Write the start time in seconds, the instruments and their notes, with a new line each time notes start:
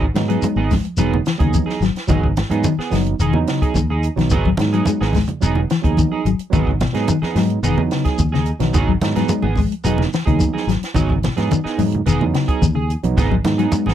0.02 kick
0.14 fingered electric bass G#2, clean electric guitar D#3, tine electric piano F#3 B3 D#4, snare, closed hi-hat, high conga, shekere
0.28 clean electric guitar F#3 B3 D#4 G#4, closed hi-hat
0.42 clean electric guitar G#3, closed hi-hat, high conga, shekere
0.56 fingered electric bass G#1, clean electric guitar B3 D#4 G#4
0.71 clean electric guitar G#3, kick, snare, open hi-hat, high conga, shekere
0.85 closed hi-hat
0.97 fingered electric bass E1, tine electric piano F#3 B3 D#4, clean electric guitar F#3 B3 D#4 G#4, closed hi-hat, shekere
1.14 low conga
1.26 clean electric guitar E3, snare, closed hi-hat, shekere
1.38 fingered electric bass D#2, clean electric guitar C#3 D#4 G#4, tine electric piano F#3 B3 D#4, kick, closed hi-hat
1.54 clean electric guitar D#3, kick, closed hi-hat, high conga, shekere
1.66 clean electric guitar D#4 G#4, snare
1.81 fingered electric bass G#1, clean electric guitar F#3, snare, closed hi-hat, shekere
1.96 snare, closed hi-hat
2.07 fingered electric bass G#1, clean electric guitar D#3 F#3 D#4 G#4, tine electric piano F#3 B3 D#4, muted clean electric guitar stroke, kick, closed hi-hat, low conga, shekere
2.23 clean electric guitar C#3, kick
2.37 clean electric guitar G#2, snare, closed hi-hat, high conga, shekere
2.50 fingered electric bass G#2, tine electric piano F#3 B3 D#4, clean electric guitar B3 D#4 G#4, closed hi-hat, high conga
2.64 clean electric guitar D#3, closed hi-hat, high conga, shekere
2.78 clean electric guitar B3 G#4, muted fingered electric bass stroke, snare
2.91 fingered electric bass F#1, tine electric piano F#3 B3 D#4, clean electric guitar F#3, snare, open hi-hat, high conga, shekere
3.06 closed hi-hat
3.19 fingered electric bass E1, clean electric guitar D#3 D#4 G#4, muted clean electric guitar stroke, closed hi-hat, shekere
3.33 fingered electric bass E2, tine electric piano F#3 B3 D#4, low conga
3.47 clean electric guitar C#3, snare, closed hi-hat, shekere
3.62 clean electric guitar D#4 G#4, muted fingered electric bass stroke, kick, closed hi-hat
3.74 fingered electric bass D#2, clean electric guitar D#3, kick, closed hi-hat, high conga, shekere
3.90 clean electric guitar D#4 G#4, muted clean electric guitar stroke
4.03 closed hi-hat, shekere
4.16 fingered electric bass B1, clean electric guitar D#3, tine electric piano F#3 B3 D#4, snare, closed hi-hat, high conga
4.30 fingered electric bass G#1, clean electric guitar F#3 B3 D#4 G#4, kick, closed hi-hat, low conga, shekere
4.45 clean electric guitar F#3, kick, high conga
4.57 fingered electric bass G#2, clean electric guitar D#3, tine electric piano F#3 B3 D#4, snare, closed hi-hat, high conga, shekere
4.73 clean electric guitar F#3 B3 D#4 G#4, closed hi-hat
4.85 clean electric guitar G#3, closed hi-hat, high conga, shekere
5.01 fingered electric bass G#1, clean electric guitar B3 D#4 G#4, snare
5.13 clean electric guitar G#3, kick, snare, open hi-hat, high conga, shekere
5.28 closed hi-hat, low conga
5.41 fingered electric bass E1, tine electric piano F#3 B3 D#4, clean electric guitar B3 D#4 G#4, muted clean electric guitar stroke, closed hi-hat, shekere
5.55 low conga
5.70 clean electric guitar E3, snare, closed hi-hat, shekere
5.82 fingered electric bass D#2, clean electric guitar C#3 D#4 G#4, tine electric piano F#3 B3 D#4, kick, closed hi-hat
5.97 clean electric guitar D#3, kick, closed hi-hat, high conga, shekere
6.12 clean electric guitar D#4 G#4
6.25 fingered electric bass G#1, clean electric guitar F#3, closed hi-hat, shekere
6.39 muted fingered electric bass stroke, closed hi-hat
6.50 fingered electric bass G#1, clean electric guitar D#3 F#3 B3 D#4 G#4, tine electric piano F#3 B3 D#4, kick, closed hi-hat, low conga, shekere
6.67 clean electric guitar C#3, kick
6.80 clean electric guitar B2, snare, closed hi-hat, high conga, shekere
6.93 fingered electric bass G#2, tine electric piano F#3 B3 D#4, clean electric guitar B3 D#4 G#4, snare, closed hi-hat
7.07 clean electric guitar D#3, closed hi-hat, high conga, shekere
7.22 clean electric guitar B3 D#4 G#4, muted fingered electric bass stroke, snare, high conga
7.35 fingered electric bass G#2, tine electric piano F#3 B3 D#4, clean electric guitar F#3, snare, open hi-hat, high conga, shekere
7.50 closed hi-hat
7.63 fingered electric bass E1, clean electric guitar D#3 B3 D#4 G#4, closed hi-hat, shekere
7.77 fingered electric bass E2, tine electric piano F#3 B3 D#4, low conga
7.91 clean electric guitar C#3, snare, closed hi-hat, shekere
8.05 clean electric guitar G#4, muted fingered electric bass stroke, kick, snare, closed hi-hat
8.18 fingered electric bass D#2, clean electric guitar D#3, kick, closed hi-hat, high conga, shekere
8.32 clean electric guitar C#3 D#4 G#4, snare
8.46 closed hi-hat, shekere
8.59 fingered electric bass B1, clean electric guitar D#3, tine electric piano F#3 B3 D#4, snare, closed hi-hat, high conga
8.73 fingered electric bass G#1, clean electric guitar F#3 B3 D#4 G#4, kick, closed hi-hat, low conga, shekere
8.88 clean electric guitar F#3, kick
9.01 fingered electric bass G#2, clean electric guitar D#3, tine electric piano F#3 B3 D#4, snare, closed hi-hat, high conga, shekere
9.16 clean electric guitar F#3 B3 D#4 G#4, snare, closed hi-hat, high conga
9.29 clean electric guitar G#3, closed hi-hat, high conga, shekere
9.42 fingered electric bass G#1, clean electric guitar B3 G#4, high conga
9.56 clean electric guitar G#3, kick, open hi-hat, high conga, shekere
9.72 closed hi-hat
9.84 fingered electric bass E1, tine electric piano F#3 B3 D#4, clean electric guitar F#3 B3 D#4 G#4, closed hi-hat, shekere
9.98 snare, low conga
10.13 clean electric guitar E3, snare, closed hi-hat, shekere
10.25 fingered electric bass D#2, clean electric guitar C#3 D#4 G#4, tine electric piano F#3 B3 D#4, kick, closed hi-hat
10.39 clean electric guitar D#3, kick, closed hi-hat, high conga, shekere
10.53 clean electric guitar D#4 G#4, snare
10.67 fingered electric bass G#1, clean electric guitar F#3, snare, closed hi-hat, shekere
10.83 snare, closed hi-hat
10.94 fingered electric bass G#1, clean electric guitar D#3 F#3 B3 D#4 G#4, tine electric piano F#3 B3 D#4, kick, closed hi-hat, low conga, shekere
11.09 clean electric guitar C#3, kick, high conga
11.23 clean electric guitar B2, snare, closed hi-hat, high conga, shekere
11.36 fingered electric bass G#2, tine electric piano F#3 B3 D#4, clean electric guitar B3 D#4 G#4, snare, closed hi-hat, high conga
11.51 clean electric guitar D#3, closed hi-hat, high conga, shekere
11.64 clean electric guitar B3 D#4 G#4, muted fingered electric bass stroke, snare
11.78 fingered electric bass G#2, tine electric piano F#3 B3 D#4, clean electric guitar F#3, open hi-hat, high conga, shekere
11.92 closed hi-hat, low conga
12.06 fingered electric bass E1, clean electric guitar D#3 B3 D#4 G#4, closed hi-hat, shekere
12.20 fingered electric bass E2, tine electric piano F#3 B3 D#4, low conga
12.34 clean electric guitar C#3, snare, closed hi-hat, shekere
12.48 clean electric guitar D#4 G#4, muted fingered electric bass stroke, kick, closed hi-hat
12.62 fingered electric bass D#2, clean electric guitar D#3, kick, closed hi-hat, high conga, shekere
12.75 clean electric guitar C#3 G#4
12.90 closed hi-hat, shekere
13.03 fingered electric bass B1, tine electric piano F#3 B3 D#4, closed hi-hat, high conga
13.17 fingered electric bass G#1, clean electric guitar B3 D#4 G#4, muted clean electric guitar stroke, kick, snare, closed hi-hat, low conga, shekere
13.31 clean electric guitar F#3, kick, high conga
13.44 fingered electric bass G#2, clean electric guitar D#3, tine electric piano F#3 B3 D#4, snare, closed hi-hat, high conga, shekere
13.58 clean electric guitar F#3 B3 D#4 G#4, closed hi-hat
13.72 clean electric guitar G#3, closed hi-hat, high conga, shekere
13.86 fingered electric bass G#1, clean electric guitar B3 D#4 G#4, snare, high conga